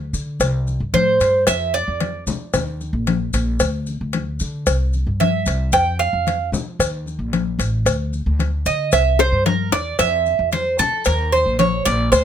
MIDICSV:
0, 0, Header, 1, 4, 480
1, 0, Start_track
1, 0, Tempo, 532481
1, 1331, Time_signature, 4, 2, 24, 8
1, 11034, End_track
2, 0, Start_track
2, 0, Title_t, "Cuban tres"
2, 0, Program_c, 0, 25
2, 845, Note_on_c, 0, 72, 95
2, 1294, Note_off_c, 0, 72, 0
2, 1329, Note_on_c, 0, 76, 104
2, 1562, Note_off_c, 0, 76, 0
2, 1568, Note_on_c, 0, 74, 89
2, 2016, Note_off_c, 0, 74, 0
2, 4688, Note_on_c, 0, 76, 90
2, 5136, Note_off_c, 0, 76, 0
2, 5165, Note_on_c, 0, 79, 106
2, 5399, Note_off_c, 0, 79, 0
2, 5403, Note_on_c, 0, 77, 102
2, 5853, Note_off_c, 0, 77, 0
2, 7808, Note_on_c, 0, 75, 100
2, 8042, Note_off_c, 0, 75, 0
2, 8050, Note_on_c, 0, 76, 103
2, 8283, Note_off_c, 0, 76, 0
2, 8291, Note_on_c, 0, 72, 104
2, 8523, Note_off_c, 0, 72, 0
2, 8526, Note_on_c, 0, 70, 87
2, 8762, Note_off_c, 0, 70, 0
2, 8767, Note_on_c, 0, 74, 105
2, 9002, Note_off_c, 0, 74, 0
2, 9006, Note_on_c, 0, 76, 115
2, 9455, Note_off_c, 0, 76, 0
2, 9488, Note_on_c, 0, 72, 90
2, 9723, Note_off_c, 0, 72, 0
2, 9728, Note_on_c, 0, 69, 105
2, 9962, Note_off_c, 0, 69, 0
2, 9969, Note_on_c, 0, 70, 85
2, 10203, Note_off_c, 0, 70, 0
2, 10208, Note_on_c, 0, 72, 96
2, 10443, Note_off_c, 0, 72, 0
2, 10448, Note_on_c, 0, 73, 90
2, 10682, Note_off_c, 0, 73, 0
2, 10686, Note_on_c, 0, 74, 117
2, 10920, Note_off_c, 0, 74, 0
2, 10924, Note_on_c, 0, 72, 95
2, 11034, Note_off_c, 0, 72, 0
2, 11034, End_track
3, 0, Start_track
3, 0, Title_t, "Upright bass"
3, 0, Program_c, 1, 32
3, 0, Note_on_c, 1, 38, 95
3, 108, Note_off_c, 1, 38, 0
3, 120, Note_on_c, 1, 50, 85
3, 353, Note_off_c, 1, 50, 0
3, 359, Note_on_c, 1, 36, 100
3, 706, Note_off_c, 1, 36, 0
3, 724, Note_on_c, 1, 43, 84
3, 836, Note_off_c, 1, 43, 0
3, 841, Note_on_c, 1, 45, 85
3, 1062, Note_off_c, 1, 45, 0
3, 1085, Note_on_c, 1, 43, 86
3, 1304, Note_off_c, 1, 43, 0
3, 1328, Note_on_c, 1, 41, 107
3, 1671, Note_off_c, 1, 41, 0
3, 1692, Note_on_c, 1, 41, 89
3, 2034, Note_off_c, 1, 41, 0
3, 2044, Note_on_c, 1, 53, 92
3, 2275, Note_off_c, 1, 53, 0
3, 2286, Note_on_c, 1, 39, 98
3, 2630, Note_off_c, 1, 39, 0
3, 2640, Note_on_c, 1, 34, 92
3, 2987, Note_off_c, 1, 34, 0
3, 3008, Note_on_c, 1, 34, 104
3, 3237, Note_off_c, 1, 34, 0
3, 3251, Note_on_c, 1, 38, 110
3, 3593, Note_off_c, 1, 38, 0
3, 3614, Note_on_c, 1, 38, 91
3, 3954, Note_off_c, 1, 38, 0
3, 3974, Note_on_c, 1, 50, 88
3, 4200, Note_off_c, 1, 50, 0
3, 4206, Note_on_c, 1, 36, 97
3, 4550, Note_off_c, 1, 36, 0
3, 4567, Note_on_c, 1, 43, 90
3, 4911, Note_off_c, 1, 43, 0
3, 4925, Note_on_c, 1, 36, 104
3, 5156, Note_off_c, 1, 36, 0
3, 5164, Note_on_c, 1, 41, 111
3, 5509, Note_off_c, 1, 41, 0
3, 5525, Note_on_c, 1, 41, 90
3, 5870, Note_off_c, 1, 41, 0
3, 5880, Note_on_c, 1, 53, 91
3, 6113, Note_off_c, 1, 53, 0
3, 6124, Note_on_c, 1, 39, 101
3, 6470, Note_off_c, 1, 39, 0
3, 6479, Note_on_c, 1, 34, 88
3, 6827, Note_off_c, 1, 34, 0
3, 6838, Note_on_c, 1, 33, 100
3, 7072, Note_off_c, 1, 33, 0
3, 7081, Note_on_c, 1, 38, 104
3, 7428, Note_off_c, 1, 38, 0
3, 7448, Note_on_c, 1, 38, 93
3, 7791, Note_off_c, 1, 38, 0
3, 7805, Note_on_c, 1, 50, 89
3, 8036, Note_off_c, 1, 50, 0
3, 8047, Note_on_c, 1, 36, 103
3, 8391, Note_off_c, 1, 36, 0
3, 8405, Note_on_c, 1, 43, 90
3, 8750, Note_off_c, 1, 43, 0
3, 8765, Note_on_c, 1, 40, 97
3, 8996, Note_off_c, 1, 40, 0
3, 9006, Note_on_c, 1, 41, 106
3, 9350, Note_off_c, 1, 41, 0
3, 9365, Note_on_c, 1, 41, 90
3, 9710, Note_off_c, 1, 41, 0
3, 9730, Note_on_c, 1, 53, 86
3, 9959, Note_off_c, 1, 53, 0
3, 9974, Note_on_c, 1, 39, 105
3, 10315, Note_off_c, 1, 39, 0
3, 10328, Note_on_c, 1, 34, 89
3, 10672, Note_off_c, 1, 34, 0
3, 10694, Note_on_c, 1, 34, 105
3, 10921, Note_off_c, 1, 34, 0
3, 10930, Note_on_c, 1, 38, 118
3, 11034, Note_off_c, 1, 38, 0
3, 11034, End_track
4, 0, Start_track
4, 0, Title_t, "Drums"
4, 124, Note_on_c, 9, 70, 77
4, 131, Note_on_c, 9, 63, 33
4, 215, Note_off_c, 9, 70, 0
4, 221, Note_off_c, 9, 63, 0
4, 363, Note_on_c, 9, 70, 86
4, 367, Note_on_c, 9, 56, 112
4, 372, Note_on_c, 9, 63, 35
4, 453, Note_off_c, 9, 70, 0
4, 457, Note_off_c, 9, 56, 0
4, 462, Note_off_c, 9, 63, 0
4, 606, Note_on_c, 9, 70, 31
4, 611, Note_on_c, 9, 63, 38
4, 696, Note_off_c, 9, 70, 0
4, 701, Note_off_c, 9, 63, 0
4, 845, Note_on_c, 9, 56, 72
4, 846, Note_on_c, 9, 70, 32
4, 849, Note_on_c, 9, 63, 85
4, 935, Note_off_c, 9, 56, 0
4, 937, Note_off_c, 9, 70, 0
4, 939, Note_off_c, 9, 63, 0
4, 1087, Note_on_c, 9, 70, 82
4, 1091, Note_on_c, 9, 63, 37
4, 1092, Note_on_c, 9, 56, 72
4, 1177, Note_off_c, 9, 70, 0
4, 1181, Note_off_c, 9, 63, 0
4, 1182, Note_off_c, 9, 56, 0
4, 1323, Note_on_c, 9, 56, 109
4, 1328, Note_on_c, 9, 70, 97
4, 1331, Note_on_c, 9, 63, 36
4, 1413, Note_off_c, 9, 56, 0
4, 1418, Note_off_c, 9, 70, 0
4, 1421, Note_off_c, 9, 63, 0
4, 1569, Note_on_c, 9, 63, 35
4, 1571, Note_on_c, 9, 70, 30
4, 1659, Note_off_c, 9, 63, 0
4, 1661, Note_off_c, 9, 70, 0
4, 1807, Note_on_c, 9, 56, 75
4, 1809, Note_on_c, 9, 70, 30
4, 1812, Note_on_c, 9, 63, 64
4, 1897, Note_off_c, 9, 56, 0
4, 1899, Note_off_c, 9, 70, 0
4, 1902, Note_off_c, 9, 63, 0
4, 2046, Note_on_c, 9, 70, 76
4, 2054, Note_on_c, 9, 64, 80
4, 2136, Note_off_c, 9, 70, 0
4, 2144, Note_off_c, 9, 64, 0
4, 2286, Note_on_c, 9, 56, 106
4, 2287, Note_on_c, 9, 70, 84
4, 2290, Note_on_c, 9, 63, 37
4, 2290, Note_on_c, 9, 64, 69
4, 2376, Note_off_c, 9, 56, 0
4, 2377, Note_off_c, 9, 70, 0
4, 2380, Note_off_c, 9, 63, 0
4, 2380, Note_off_c, 9, 64, 0
4, 2531, Note_on_c, 9, 63, 37
4, 2531, Note_on_c, 9, 70, 32
4, 2621, Note_off_c, 9, 63, 0
4, 2621, Note_off_c, 9, 70, 0
4, 2767, Note_on_c, 9, 70, 30
4, 2769, Note_on_c, 9, 56, 76
4, 2773, Note_on_c, 9, 63, 85
4, 2857, Note_off_c, 9, 70, 0
4, 2859, Note_off_c, 9, 56, 0
4, 2863, Note_off_c, 9, 63, 0
4, 3004, Note_on_c, 9, 70, 80
4, 3011, Note_on_c, 9, 56, 74
4, 3020, Note_on_c, 9, 63, 37
4, 3094, Note_off_c, 9, 70, 0
4, 3101, Note_off_c, 9, 56, 0
4, 3110, Note_off_c, 9, 63, 0
4, 3243, Note_on_c, 9, 70, 101
4, 3245, Note_on_c, 9, 56, 114
4, 3259, Note_on_c, 9, 63, 35
4, 3333, Note_off_c, 9, 70, 0
4, 3335, Note_off_c, 9, 56, 0
4, 3349, Note_off_c, 9, 63, 0
4, 3484, Note_on_c, 9, 70, 31
4, 3502, Note_on_c, 9, 63, 37
4, 3574, Note_off_c, 9, 70, 0
4, 3592, Note_off_c, 9, 63, 0
4, 3723, Note_on_c, 9, 70, 31
4, 3724, Note_on_c, 9, 56, 77
4, 3737, Note_on_c, 9, 63, 60
4, 3813, Note_off_c, 9, 70, 0
4, 3814, Note_off_c, 9, 56, 0
4, 3827, Note_off_c, 9, 63, 0
4, 3963, Note_on_c, 9, 70, 76
4, 3978, Note_on_c, 9, 63, 33
4, 4053, Note_off_c, 9, 70, 0
4, 4068, Note_off_c, 9, 63, 0
4, 4205, Note_on_c, 9, 70, 88
4, 4208, Note_on_c, 9, 56, 113
4, 4215, Note_on_c, 9, 63, 36
4, 4295, Note_off_c, 9, 70, 0
4, 4298, Note_off_c, 9, 56, 0
4, 4306, Note_off_c, 9, 63, 0
4, 4446, Note_on_c, 9, 70, 31
4, 4458, Note_on_c, 9, 63, 38
4, 4536, Note_off_c, 9, 70, 0
4, 4548, Note_off_c, 9, 63, 0
4, 4687, Note_on_c, 9, 70, 30
4, 4695, Note_on_c, 9, 56, 75
4, 4696, Note_on_c, 9, 63, 87
4, 4778, Note_off_c, 9, 70, 0
4, 4785, Note_off_c, 9, 56, 0
4, 4786, Note_off_c, 9, 63, 0
4, 4922, Note_on_c, 9, 70, 81
4, 4934, Note_on_c, 9, 63, 40
4, 4936, Note_on_c, 9, 56, 71
4, 5012, Note_off_c, 9, 70, 0
4, 5024, Note_off_c, 9, 63, 0
4, 5026, Note_off_c, 9, 56, 0
4, 5161, Note_on_c, 9, 70, 95
4, 5174, Note_on_c, 9, 56, 109
4, 5174, Note_on_c, 9, 63, 34
4, 5251, Note_off_c, 9, 70, 0
4, 5264, Note_off_c, 9, 56, 0
4, 5264, Note_off_c, 9, 63, 0
4, 5411, Note_on_c, 9, 70, 31
4, 5415, Note_on_c, 9, 63, 37
4, 5501, Note_off_c, 9, 70, 0
4, 5505, Note_off_c, 9, 63, 0
4, 5651, Note_on_c, 9, 63, 62
4, 5651, Note_on_c, 9, 70, 31
4, 5658, Note_on_c, 9, 56, 74
4, 5741, Note_off_c, 9, 63, 0
4, 5741, Note_off_c, 9, 70, 0
4, 5748, Note_off_c, 9, 56, 0
4, 5889, Note_on_c, 9, 64, 85
4, 5893, Note_on_c, 9, 70, 78
4, 5979, Note_off_c, 9, 64, 0
4, 5983, Note_off_c, 9, 70, 0
4, 6128, Note_on_c, 9, 63, 34
4, 6131, Note_on_c, 9, 56, 111
4, 6133, Note_on_c, 9, 70, 93
4, 6218, Note_off_c, 9, 63, 0
4, 6221, Note_off_c, 9, 56, 0
4, 6223, Note_off_c, 9, 70, 0
4, 6367, Note_on_c, 9, 63, 36
4, 6377, Note_on_c, 9, 70, 34
4, 6457, Note_off_c, 9, 63, 0
4, 6467, Note_off_c, 9, 70, 0
4, 6608, Note_on_c, 9, 63, 87
4, 6609, Note_on_c, 9, 56, 70
4, 6616, Note_on_c, 9, 70, 30
4, 6698, Note_off_c, 9, 63, 0
4, 6699, Note_off_c, 9, 56, 0
4, 6706, Note_off_c, 9, 70, 0
4, 6847, Note_on_c, 9, 56, 73
4, 6848, Note_on_c, 9, 63, 37
4, 6855, Note_on_c, 9, 70, 78
4, 6937, Note_off_c, 9, 56, 0
4, 6938, Note_off_c, 9, 63, 0
4, 6945, Note_off_c, 9, 70, 0
4, 7087, Note_on_c, 9, 63, 37
4, 7088, Note_on_c, 9, 56, 110
4, 7089, Note_on_c, 9, 70, 92
4, 7177, Note_off_c, 9, 63, 0
4, 7179, Note_off_c, 9, 56, 0
4, 7180, Note_off_c, 9, 70, 0
4, 7327, Note_on_c, 9, 63, 37
4, 7330, Note_on_c, 9, 70, 29
4, 7417, Note_off_c, 9, 63, 0
4, 7420, Note_off_c, 9, 70, 0
4, 7566, Note_on_c, 9, 63, 60
4, 7569, Note_on_c, 9, 70, 32
4, 7573, Note_on_c, 9, 56, 73
4, 7657, Note_off_c, 9, 63, 0
4, 7659, Note_off_c, 9, 70, 0
4, 7664, Note_off_c, 9, 56, 0
4, 7804, Note_on_c, 9, 70, 77
4, 7807, Note_on_c, 9, 63, 34
4, 7894, Note_off_c, 9, 70, 0
4, 7897, Note_off_c, 9, 63, 0
4, 8040, Note_on_c, 9, 70, 87
4, 8048, Note_on_c, 9, 56, 111
4, 8051, Note_on_c, 9, 63, 36
4, 8130, Note_off_c, 9, 70, 0
4, 8138, Note_off_c, 9, 56, 0
4, 8142, Note_off_c, 9, 63, 0
4, 8286, Note_on_c, 9, 60, 95
4, 8288, Note_on_c, 9, 70, 31
4, 8290, Note_on_c, 9, 63, 37
4, 8376, Note_off_c, 9, 60, 0
4, 8378, Note_off_c, 9, 70, 0
4, 8380, Note_off_c, 9, 63, 0
4, 8528, Note_on_c, 9, 56, 73
4, 8528, Note_on_c, 9, 61, 74
4, 8528, Note_on_c, 9, 63, 83
4, 8529, Note_on_c, 9, 70, 31
4, 8618, Note_off_c, 9, 56, 0
4, 8618, Note_off_c, 9, 61, 0
4, 8618, Note_off_c, 9, 63, 0
4, 8619, Note_off_c, 9, 70, 0
4, 8765, Note_on_c, 9, 56, 70
4, 8765, Note_on_c, 9, 61, 100
4, 8767, Note_on_c, 9, 70, 81
4, 8770, Note_on_c, 9, 63, 38
4, 8855, Note_off_c, 9, 56, 0
4, 8855, Note_off_c, 9, 61, 0
4, 8857, Note_off_c, 9, 70, 0
4, 8860, Note_off_c, 9, 63, 0
4, 9004, Note_on_c, 9, 56, 110
4, 9006, Note_on_c, 9, 70, 97
4, 9012, Note_on_c, 9, 63, 34
4, 9094, Note_off_c, 9, 56, 0
4, 9096, Note_off_c, 9, 70, 0
4, 9103, Note_off_c, 9, 63, 0
4, 9248, Note_on_c, 9, 70, 31
4, 9255, Note_on_c, 9, 63, 36
4, 9338, Note_off_c, 9, 70, 0
4, 9345, Note_off_c, 9, 63, 0
4, 9482, Note_on_c, 9, 70, 30
4, 9488, Note_on_c, 9, 56, 70
4, 9492, Note_on_c, 9, 63, 63
4, 9572, Note_off_c, 9, 70, 0
4, 9578, Note_off_c, 9, 56, 0
4, 9582, Note_off_c, 9, 63, 0
4, 9723, Note_on_c, 9, 70, 82
4, 9734, Note_on_c, 9, 64, 81
4, 9813, Note_off_c, 9, 70, 0
4, 9824, Note_off_c, 9, 64, 0
4, 9958, Note_on_c, 9, 70, 88
4, 9967, Note_on_c, 9, 56, 107
4, 9977, Note_on_c, 9, 63, 35
4, 10048, Note_off_c, 9, 70, 0
4, 10057, Note_off_c, 9, 56, 0
4, 10068, Note_off_c, 9, 63, 0
4, 10207, Note_on_c, 9, 70, 32
4, 10215, Note_on_c, 9, 63, 34
4, 10297, Note_off_c, 9, 70, 0
4, 10305, Note_off_c, 9, 63, 0
4, 10449, Note_on_c, 9, 70, 29
4, 10450, Note_on_c, 9, 63, 90
4, 10453, Note_on_c, 9, 56, 76
4, 10539, Note_off_c, 9, 70, 0
4, 10540, Note_off_c, 9, 63, 0
4, 10543, Note_off_c, 9, 56, 0
4, 10686, Note_on_c, 9, 70, 80
4, 10692, Note_on_c, 9, 56, 74
4, 10696, Note_on_c, 9, 63, 37
4, 10777, Note_off_c, 9, 70, 0
4, 10782, Note_off_c, 9, 56, 0
4, 10786, Note_off_c, 9, 63, 0
4, 10930, Note_on_c, 9, 56, 113
4, 10930, Note_on_c, 9, 70, 96
4, 10936, Note_on_c, 9, 63, 33
4, 11020, Note_off_c, 9, 70, 0
4, 11021, Note_off_c, 9, 56, 0
4, 11026, Note_off_c, 9, 63, 0
4, 11034, End_track
0, 0, End_of_file